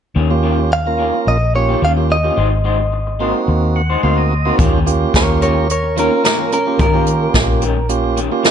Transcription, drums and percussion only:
4.59 kick loud
4.59 closed hi-hat medium
4.87 closed hi-hat medium
5.14 kick medium
5.14 snare loud
5.14 closed hi-hat medium
5.42 closed hi-hat medium
5.70 closed hi-hat medium
5.97 closed hi-hat medium
6.25 snare loud
6.25 closed hi-hat medium
6.52 closed hi-hat medium
6.79 kick loud
6.79 closed hi-hat medium
7.06 closed hi-hat medium
7.34 kick medium
7.34 snare loud
7.34 closed hi-hat medium
7.61 closed hi-hat medium
7.89 closed hi-hat medium
8.17 closed hi-hat medium
8.44 snare loud
8.44 closed hi-hat medium

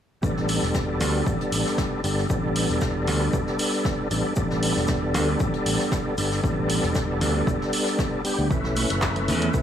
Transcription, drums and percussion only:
0.23 kick loud
0.23 shaker medium
0.37 snare soft
0.49 open hi-hat medium
0.49 shaker medium
0.62 snare soft
0.75 kick loud
0.75 snare loud
0.75 shaker medium
1.01 open hi-hat medium
1.01 shaker medium
1.27 kick loud
1.27 shaker medium
1.40 closed hi-hat soft
1.52 open hi-hat loud
1.52 shaker medium
1.66 snare medium
1.78 kick loud
1.78 snare loud
1.78 shaker medium
2.04 open hi-hat medium
2.04 shaker medium
2.18 snare soft
2.30 kick loud
2.30 shaker medium
2.56 open hi-hat loud
2.56 shaker medium
2.69 closed hi-hat soft
2.81 kick loud
2.81 snare loud
2.81 shaker medium
3.07 open hi-hat medium
3.07 shaker medium
3.33 kick loud
3.33 shaker medium
3.47 snare soft
3.59 open hi-hat loud
3.59 shaker medium
3.73 closed hi-hat soft
3.85 kick loud
3.85 snare loud
3.85 shaker medium
4.11 open hi-hat medium
4.11 shaker medium
4.36 kick loud
4.36 shaker medium
4.50 snare soft
4.63 open hi-hat loud
4.63 shaker medium
4.77 snare soft
4.88 kick loud
4.88 snare loud
4.88 shaker medium
5.14 open hi-hat medium
5.14 shaker medium
5.40 kick loud
5.40 shaker medium
5.54 closed hi-hat soft
5.66 open hi-hat loud
5.66 shaker medium
5.79 snare medium
5.92 kick loud
5.92 snare loud
5.92 shaker medium
6.18 open hi-hat medium
6.18 shaker medium
6.31 snare soft
6.44 kick loud
6.44 shaker medium
6.70 open hi-hat loud
6.70 shaker medium
6.84 closed hi-hat soft
6.95 kick loud
6.95 snare loud
6.95 shaker medium
7.21 open hi-hat medium
7.21 shaker medium
7.47 kick loud
7.47 shaker medium
7.62 snare soft
7.73 open hi-hat loud
7.73 shaker medium
7.86 closed hi-hat soft
7.99 kick loud
7.99 snare loud
7.99 shaker medium
8.25 open hi-hat medium
8.25 shaker medium
8.51 kick loud
8.51 shaker medium
8.64 snare soft
8.64 low conga medium
8.76 open hi-hat loud
8.76 high conga medium
8.76 shaker medium
8.90 snare soft
8.90 closed hi-hat medium
9.02 kick loud
9.02 snare loud
9.02 clap loud
9.02 shaker medium
9.16 closed hi-hat soft
9.16 low conga medium
9.28 open hi-hat medium
9.28 shaker medium
9.42 closed hi-hat medium
9.42 high conga medium
9.54 kick loud
9.54 shaker medium

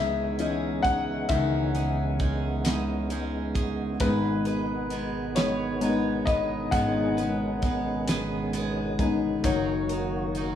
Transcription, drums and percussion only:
0.39 closed hi-hat medium
0.84 kick medium
0.84 closed hi-hat soft
1.29 kick medium
1.29 closed hi-hat medium
1.75 closed hi-hat soft
2.20 kick medium
2.20 closed hi-hat soft
2.65 snare loud
2.65 closed hi-hat medium
3.10 closed hi-hat medium
3.55 kick medium
3.55 closed hi-hat soft
4.00 kick loud
4.00 closed hi-hat medium
4.45 closed hi-hat soft
4.90 closed hi-hat soft
5.36 snare medium
5.36 closed hi-hat medium
5.81 closed hi-hat medium
6.27 kick medium
6.27 closed hi-hat soft
6.72 kick medium
6.72 closed hi-hat medium
7.18 closed hi-hat soft
7.62 kick medium
7.62 closed hi-hat soft
8.08 snare loud
8.08 closed hi-hat medium
8.53 closed hi-hat medium
8.99 kick medium
8.99 closed hi-hat soft
9.44 kick loud
9.44 closed hi-hat medium
9.89 closed hi-hat medium
10.35 closed hi-hat soft

